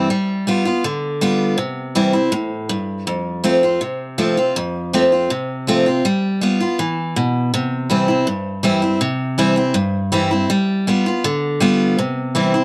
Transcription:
0.10 0.46 G3 medium
0.47 0.65 G3 medium
0.47 0.65 B3 medium
0.47 0.64 F4 medium
0.65 0.84 B3 medium
0.65 0.83 F4 medium
0.84 1.55 D3 medium
1.21 1.57 G3 loud
1.21 1.57 B3 medium
1.21 1.58 F4 loud
1.58 2.29 C3 medium
1.95 2.13 E3 medium
1.95 2.14 G3 medium
1.95 2.14 C4 medium
1.95 2.12 E4 medium
2.13 2.33 C4 soft
2.13 2.32 E4 medium
2.32 2.68 A2 medium
2.69 3.05 G2 medium
3.07 3.78 F2 medium
3.44 3.62 F3 medium
3.44 3.62 A3 medium
3.44 3.62 C4 medium
3.44 3.62 F4 medium
3.63 3.82 C4 medium
3.63 3.81 F4 medium
3.81 4.52 C3 medium
4.18 4.36 F3 medium
4.18 4.36 A3 loud
4.18 4.37 C4 medium
4.18 4.36 F4 medium
4.37 4.56 C4 soft
4.37 4.55 F4 medium
4.56 5.27 F2 loud
4.93 5.11 F3 medium
4.93 5.11 A3 medium
4.93 5.12 C4 loud
4.93 5.11 F4 medium
5.12 5.30 C4 medium
5.12 5.30 F4 medium
5.30 6.01 C3 loud
5.67 5.85 F3 medium
5.67 5.86 A3 loud
5.67 5.86 C4 loud
5.67 5.85 F4 loud
5.86 6.05 C4 medium
5.86 6.04 F4 medium
6.05 6.40 G3 medium
6.41 6.59 G3 medium
6.41 6.60 B3 medium
6.41 6.59 F4 medium
6.60 6.79 B3 medium
6.60 6.78 F4 medium
6.79 7.14 E3 medium
7.16 7.51 B2 medium
7.54 8.24 C3 medium
7.90 8.08 E3 medium
7.90 8.08 G3 medium
7.90 8.08 C4 medium
7.90 8.07 E4 medium
8.08 8.27 C4 soft
8.08 8.26 E4 medium
8.27 8.98 G2 medium
8.63 8.82 E3 medium
8.63 8.82 G3 loud
8.63 8.82 C4 medium
8.63 8.81 E4 loud
8.82 9.01 C4 soft
8.82 9.00 E4 medium
9.01 9.72 C3 medium
9.38 9.56 E3 medium
9.38 9.56 G3 medium
9.38 9.56 C4 medium
9.38 9.55 E4 medium
9.56 9.75 C4 medium
9.56 9.74 E4 medium
9.74 10.46 G2 medium
10.12 10.30 E3 medium
10.12 10.31 G3 medium
10.12 10.31 C4 medium
10.12 10.30 E4 loud
10.31 10.50 C4 medium
10.31 10.49 E4 medium
10.50 10.86 G3 medium
10.87 11.05 G3 medium
10.87 11.05 B3 medium
10.87 11.05 F4 medium
11.06 11.25 B3 medium
11.06 11.24 F4 medium
11.24 11.95 D3 medium
11.60 11.96 G3 medium
11.60 11.97 B3 loud
11.60 11.97 F4 loud
11.98 12.64 C3 medium
12.35 12.53 E3 medium
12.35 12.53 G3 medium
12.35 12.54 C4 medium
12.35 12.53 E4 medium
12.54 12.64 C4 soft
12.54 12.64 E4 medium

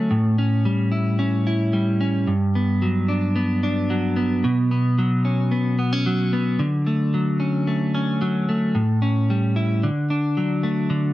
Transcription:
0.00 0.11 D3 medium
0.00 0.17 F#3 medium
0.00 0.38 A3 medium
0.00 0.38 C#4 medium
0.11 2.27 A2 medium
0.38 1.18 C#4 medium
0.65 1.73 G3 medium
0.92 1.46 E4 medium
1.19 1.99 C#4 medium
1.47 2.33 E4 medium
1.73 2.82 G3 medium
2.01 2.33 C#4 medium
2.27 4.43 G2 medium
2.55 3.35 B3 medium
2.82 3.90 F#3 medium
3.08 3.62 D4 medium
3.36 4.16 B3 medium
3.63 4.49 D4 medium
3.90 4.98 F#3 medium
4.16 4.71 B3 medium
4.44 6.59 B2 medium
4.71 5.50 B3 medium
4.98 6.06 F#3 medium
5.25 5.78 C#4 medium
5.51 5.77 B3 medium
5.79 5.93 B3 medium
5.93 6.65 C#4 medium
6.06 7.13 F#3 medium
6.33 6.65 B3 medium
6.59 8.75 D3 medium
6.86 7.67 A3 medium
7.14 8.20 F#3 medium
7.40 7.93 C#4 medium
7.67 8.48 A3 medium
7.95 8.81 C#4 medium
8.21 8.81 F#3 medium
8.49 9.02 A3 medium
8.75 9.88 A2 medium
9.02 9.89 C#4 medium
9.30 9.89 G3 medium
9.56 9.89 E4 medium
9.83 10.90 D3 medium
10.10 11.13 D4 medium
10.37 11.13 F#3 medium
10.63 11.13 A3 medium
10.90 11.13 D3 medium

